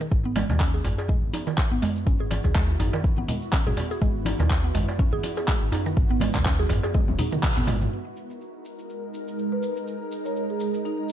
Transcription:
0.01 synth pluck D#3, cabasa
0.11 analog synth bass G#1, ambient pad B3 E4 F#4, kick, cabasa
0.25 synth pluck B3
0.36 synth pluck G#3, open hi-hat, darbuka tek, high conga, cabasa
0.49 analog synth bass D#2, darbuka ka, low conga, cabasa
0.60 synth pluck C#4, kick, clap, cabasa
0.74 synth pluck G#4
0.84 analog synth bass G#1, open hi-hat, darbuka ka, darbuka tek, darbuka dum, cabasa
0.98 synth pluck G#4, darbuka ka, cabasa
1.08 synth pluck G#3, kick, high conga, low conga, cabasa
1.23 analog synth bass G#1
1.33 synth pluck D#4, open hi-hat, darbuka ka, high conga, cabasa
1.47 synth pluck D#3, darbuka tek, cabasa
1.58 kick, clap, cabasa
1.71 analog synth bass G#1, synth pluck B3
1.82 synth pluck G#3, open hi-hat, darbuka tek, darbuka dum, cabasa
1.96 cabasa
2.07 analog synth bass G#1, synth pluck C#4, kick, cabasa
2.20 synth pluck G#4
2.31 open hi-hat, darbuka tek, high conga, cabasa
2.44 analog synth bass D#2, synth pluck G#4, kick, darbuka ka, low conga, cabasa
2.55 synth pluck G#3, kick, clap, cabasa
2.79 analog synth bass G#1, synth pluck D#4, open hi-hat, darbuka ka, high conga, darbuka tek, darbuka dum, cabasa
2.93 synth pluck D#3, darbuka ka, cabasa
3.03 kick, high conga, cabasa
3.18 analog synth bass G#1, synth pluck B3, high conga
3.28 synth pluck G#3, open hi-hat, low conga, cabasa
3.42 cabasa
3.52 synth pluck C#4, kick, clap, high conga, cabasa
3.67 analog synth bass G#1, synth pluck G#4, low conga
3.77 open hi-hat, darbuka tek, low conga, cabasa
3.91 synth pluck G#4, cabasa
4.02 analog synth bass G#1, synth pluck G#3, kick, cabasa
4.25 synth pluck D#4, open hi-hat, high conga, darbuka tek, cabasa
4.39 analog synth bass D#2, synth pluck D#3, darbuka ka, low conga, cabasa
4.50 kick, clap, cabasa
4.64 synth pluck B3
4.75 analog synth bass G#1, synth pluck G#3, open hi-hat, darbuka ka, darbuka tek, darbuka dum, cabasa
4.88 darbuka ka, cabasa
4.98 synth pluck C#4, kick, high conga, low conga, cabasa
5.13 analog synth bass G#1, synth pluck G#4
5.23 open hi-hat, darbuka ka, high conga, cabasa
5.37 synth pluck G#4, darbuka tek, cabasa
5.48 synth pluck G#3, kick, clap, cabasa
5.62 analog synth bass G#1
5.72 synth pluck D#4, open hi-hat, darbuka tek, darbuka dum, cabasa
5.86 synth pluck D#3, cabasa
5.97 analog synth bass G#1, kick, cabasa
6.11 synth pluck B3
6.20 synth pluck G#3, open hi-hat, high conga, darbuka tek, cabasa
6.35 analog synth bass D#2, kick, clap, darbuka ka, low conga, cabasa
6.45 synth pluck C#4, kick, clap, cabasa
6.59 synth pluck G#4
6.69 analog synth bass G#1, open hi-hat, darbuka ka, darbuka tek, high conga, darbuka dum, cabasa
6.83 synth pluck G#4, darbuka ka, cabasa
6.94 synth pluck G#3, kick, high tom, high conga, cabasa
7.08 analog synth bass D#1, high tom, high conga
7.19 synth pluck D#4, open hi-hat, low conga, cabasa
7.32 synth pluck D#3, mid tom, cabasa
7.43 kick, clap, mid tom, high conga, cabasa
7.57 analog synth bass G#1, synth pluck B3, low conga
7.67 synth pluck G#3, mid tom, open hi-hat, darbuka tek, low conga, cabasa
7.82 mid tom, cabasa
7.92 ambient pad G#3 D#4 A#4, cabasa
8.17 cabasa
8.30 cabasa
8.41 cabasa
8.65 cabasa
8.79 cabasa
8.90 cabasa
9.14 cabasa
9.28 cabasa
9.39 cabasa
9.52 marimba B4
9.63 marimba B4, cabasa
9.77 cabasa
9.87 cabasa
10.12 cabasa
10.25 marimba C#5, cabasa
10.36 cabasa
10.50 marimba G#4
10.60 cabasa
10.74 cabasa
10.85 marimba D#4, cabasa

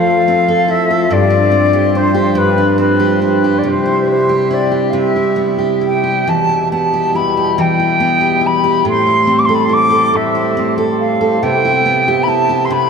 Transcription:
Already playing: harmonium F2 F3 A3, steel-string acoustic guitar F3 C4 A4
0.00 flute F5
0.28 steel-string acoustic guitar C4
0.48 steel-string acoustic guitar A4
0.68 steel-string acoustic guitar E4, flute E5
0.90 steel-string acoustic guitar A4
1.08 harmonium G2 F3 C4, steel-string acoustic guitar G2, flute D5
1.30 steel-string acoustic guitar D4
1.51 steel-string acoustic guitar C4
1.73 steel-string acoustic guitar G4
1.95 steel-string acoustic guitar D4, flute C5
2.14 steel-string acoustic guitar G4
2.35 steel-string acoustic guitar G2, flute B4
2.58 steel-string acoustic guitar D4
2.78 steel-string acoustic guitar C4, flute B4
2.99 steel-string acoustic guitar G4
3.22 steel-string acoustic guitar D4, flute B4
3.44 steel-string acoustic guitar G4
3.58 flute D5
3.64 steel-string acoustic guitar C3, harmonium C3 G3 E4
3.68 flute C5
3.86 steel-string acoustic guitar E4
4.11 flute C5
4.29 steel-string acoustic guitar G4
4.51 steel-string acoustic guitar E4, flute D5
4.71 steel-string acoustic guitar G4
4.90 steel-string acoustic guitar C3, flute F5
4.99 flute E5
5.16 steel-string acoustic guitar E4
5.36 steel-string acoustic guitar B3
5.58 steel-string acoustic guitar G4
5.81 steel-string acoustic guitar E4
5.85 flute G5
6.04 steel-string acoustic guitar G4
6.25 harmonium E2 B2 G3, steel-string acoustic guitar E3
6.29 flute A5
6.49 steel-string acoustic guitar E4
6.72 steel-string acoustic guitar B3, flute A5
6.93 steel-string acoustic guitar G4
7.15 steel-string acoustic guitar E4, flute B5
7.37 steel-string acoustic guitar G4
7.58 steel-string acoustic guitar E3, flute G5
7.80 steel-string acoustic guitar E4
8.00 steel-string acoustic guitar B3
8.21 steel-string acoustic guitar G4
8.41 steel-string acoustic guitar E4
8.46 flute B5
8.64 steel-string acoustic guitar G4
8.85 steel-string acoustic guitar A2, harmonium A2 C4, flute C6
9.07 steel-string acoustic guitar E4
9.27 steel-string acoustic guitar C4
9.39 flute D6
9.45 steel-string acoustic guitar A4, flute C6
9.55 flute B5
9.65 flute C6
9.69 steel-string acoustic guitar E4
9.73 flute D6
9.90 steel-string acoustic guitar A4
10.14 steel-string acoustic guitar A2, flute E5
10.35 steel-string acoustic guitar E4
10.57 steel-string acoustic guitar C4
10.78 steel-string acoustic guitar A4
10.99 flute F5
11.21 steel-string acoustic guitar A4
11.42 harmonium C3 B3 E4, steel-string acoustic guitar C3, flute G5
11.65 steel-string acoustic guitar E4
11.86 steel-string acoustic guitar B3
12.08 steel-string acoustic guitar G4
12.23 flute B5
12.28 steel-string acoustic guitar E4, flute A5
12.49 steel-string acoustic guitar G4
12.65 flute C6
12.70 steel-string acoustic guitar C3, flute B5

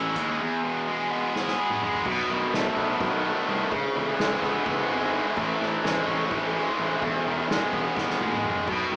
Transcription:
Already playing: picked electric bass A1, overdriven electric guitar E3 G#3 C#4 E4
0.16 picked electric bass D#2, overdriven electric guitar G#3, kick, closed hi-hat
0.40 overdriven electric guitar E2
0.64 overdriven electric guitar B2
0.87 overdriven electric guitar G#3
1.11 overdriven electric guitar B3
1.35 overdriven electric guitar G#4, snare
1.48 snare
1.59 overdriven electric guitar B3
1.70 mid tom
1.82 overdriven electric guitar G#3, mid tom
1.93 floor tom
2.05 picked electric bass B1, overdriven electric guitar B2, kick, crash
2.29 picked electric bass B1, overdriven electric guitar D#3, ride
2.53 picked electric bass B1, overdriven electric guitar A3, snare, ride
2.77 picked electric bass B1, overdriven electric guitar B3, kick, ride
3.00 picked electric bass B1, overdriven electric guitar D#3, kick, snare, ride
3.24 overdriven electric guitar A3, ride
3.48 picked electric bass C2, overdriven electric guitar D#3, ride
3.71 picked electric bass C#2, overdriven electric guitar C#3, kick, ride
3.95 picked electric bass C#2, overdriven electric guitar E3, ride
4.19 picked electric bass C#2, overdriven electric guitar G#3, snare, ride
4.42 picked electric bass C#2, overdriven electric guitar B3, kick, snare, ride
4.66 picked electric bass C#2, overdriven electric guitar E3, kick, ride
4.89 picked electric bass G#1, overdriven electric guitar G#3, ride
5.12 overdriven electric guitar E3, ride
5.36 picked electric bass A1, overdriven electric guitar A2, kick, crash
5.60 picked electric bass A1, overdriven electric guitar E3, snare, ride
5.83 picked electric bass A1, overdriven electric guitar G#3, snare, ride
6.07 picked electric bass A1, overdriven electric guitar C#4, kick, ride
6.30 picked electric bass A1, overdriven electric guitar E3, kick, ride
6.54 overdriven electric guitar G#3, ride
6.78 picked electric bass A1, overdriven electric guitar E3, ride
7.02 picked electric bass E1, overdriven electric guitar E2, kick, ride
7.26 picked electric bass E1, overdriven electric guitar D#3, ride
7.50 picked electric bass E1, overdriven electric guitar G#3, snare, ride
7.73 picked electric bass E1, overdriven electric guitar B3, kick, ride
7.97 picked electric bass E1, overdriven electric guitar D#3, kick, snare
8.10 snare
8.20 picked electric bass E1, overdriven electric guitar G#3, high tom
8.32 mid tom
8.44 overdriven electric guitar D#3, mid tom
8.56 floor tom
8.68 picked electric bass B1, overdriven electric guitar B2, kick, crash
8.91 picked electric bass B1, overdriven electric guitar D#3, ride

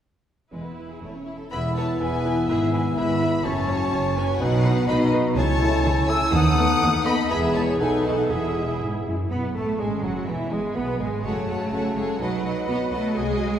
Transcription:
0.51 double bass section E1, cello section E2, violin section G#3 B4, viola section E4
0.63 violin section B3
0.76 violin section E4
0.89 violin section G#4
1.01 double bass section E1, cello section E2, violin section A3 C#5
1.13 violin section C#4
1.26 violin section E4
1.39 violin section A4
1.51 double bass section E1, cello section E2, french horn section B3 E4, bassoon B3, clarinet E4, viola section E4 B4, violin section E5 B5, cor anglais E5, flute B5
1.75 viola section E4 B4, violin section C#5 A5, flute A5
2.00 double bass section E1, cello section E2, bassoon B3, clarinet E4, viola section E4 B4, violin section B4 G#5, cor anglais E5, flute G#5
2.25 viola section E4 B4
2.48 double bass section G#1, cello section G#2, bassoon B3, viola section E4 B4, clarinet E4, violin section G#4 E5, flute E5, cor anglais E5
2.73 viola section E4 B4, violin section B4 G#5, flute G#5
2.97 double bass section G#1, cello section G#2, bassoon B3, clarinet E4, viola section E4 B4, cor anglais E5, violin section E5 B5, flute B5
3.21 viola section E4 B4
3.44 double bass section F#1, cello section F#2, bassoon C#4, french horn section C#4 F#4, viola section C#4 C#5, clarinet F#4, violin section C#5 A5, cor anglais C#5, flute A5
3.68 viola section C#4 C#5
3.92 double bass section F#1, cello section F#2, viola section C#4 C#5
4.15 viola section C#4 C#5, violin section B4 G#5, flute G#5
4.40 double bass section B1, cello section B2, french horn section B3 D#4, viola section D#4 B4, bassoon D#4, clarinet F#4, cor anglais B4, violin section B4 F#5, flute F#5
4.64 viola section D#4 B4
4.88 double bass section B1, cello section B2, bassoon D#4, viola section D#4 B4, clarinet F#4, cor anglais B4, violin section D#5 B5, flute B5
5.13 viola section D#4 B4
5.36 double bass section C#2, cello section C#3, bassoon C#4, clarinet E4, cor anglais A4, violin section C#5 A5, flute A5
5.60 french horn section A3 E4, viola section E4 A4
5.85 double bass section C#2, cello section C#3
6.08 french horn section A3 E4, viola section E4 A4, violin section G#5 E6, flute E6
6.32 cello section D#2, double bass section D#2, bassoon B3, clarinet D#4, cor anglais A4, violin section F#5 D#6, flute D#6
6.58 french horn section A3 B3, viola section B3 A4
6.82 double bass section D#2, cello section D#2
7.05 french horn section A3 B3, viola section B3 A4, violin section D#5 B5, flute B5
7.30 double bass section E1, cello section E2, bassoon B3, viola section B3 G#4, clarinet E4, cor anglais G#4, violin section E5 B5, flute B5
7.55 french horn section G#3 B3, violin section C#5 A5, flute A5
7.79 double bass section B1, cello section B2, bassoon B3, clarinet D#4, viola section D#4 A4, cor anglais A4, violin section B4 G#5, flute G#5
8.04 french horn section A3 D#4, violin section A4 F#5, flute F#5
8.30 double bass section E1, cello section E2, bassoon B3, clarinet E4, viola section E4 G#4, cor anglais G#4, violin section G#4 E5, flute E5
8.55 french horn section G#3 E4
8.81 cello section G#2
9.06 cello section F#2, french horn section G#3 E4
9.31 double bass section B1, viola section B3, violin section B3 B5, cello section B3, bassoon B3, cor anglais B3, flute B4
9.55 double bass section A1, violin section A3 A5, cor anglais A3, cello section A3, bassoon A3, viola section A3, flute A4
9.79 double bass section G#1, cor anglais G#3, viola section G#3, cello section G#3, violin section G#3 G#5, bassoon G#3, clarinet C#4, flute G#4
10.03 double bass section F#1, cor anglais F#3, bassoon F#3, viola section F#3, cello section F#3, violin section F#4 F#5, flute F#4
10.28 double bass section E1, viola section E3, cor anglais E3, bassoon E3, cello section E3, clarinet B3, flute E4, violin section E4 E5
10.51 double bass section G#1, violin section G#3 G#5, viola section G#3, cello section G#3, bassoon G#3, cor anglais G#3, flute G#4
10.75 double bass section B1, viola section B3, cor anglais B3, cello section B3, bassoon B3, violin section B3 B5, flute B4
10.99 double bass section G#1, viola section G#3, cello section G#3, bassoon G#3, violin section G#3 G#5, cor anglais G#3, flute G#4
11.23 double bass section F#1, bassoon C#3, cello section A3, viola section F#4 A4, clarinet F#4, cor anglais A4, violin section C#5 F#5 A5, flute C#5
11.48 double bass section F#1, viola section F#4 A4, violin section C#5 F#5
11.71 double bass section F#1, clarinet C#4, viola section F#4 A4, violin section C#5 F#5
11.96 double bass section F#1, cello section G#3, viola section F#4 A4, violin section C#5 F#5 G#5
12.19 double bass section B1, cello section F#3, bassoon F#3, clarinet D#4, viola section F#4 B4, cor anglais B4, flute D#5, violin section D#5 F#5
12.43 double bass section B1, viola section F#4 B4, violin section D#5 F#5
12.67 double bass section B1, cello section B3, clarinet F#4, viola section F#4 B4, violin section D#5 F#5 B5
12.91 double bass section B1, cello section A3, viola section F#4 B4, violin section D#5 F#5 A5
13.15 double bass section C2, cello section G#3, viola section F#4 G#4, clarinet G#4, cor anglais G#4, violin section D#5 G#5

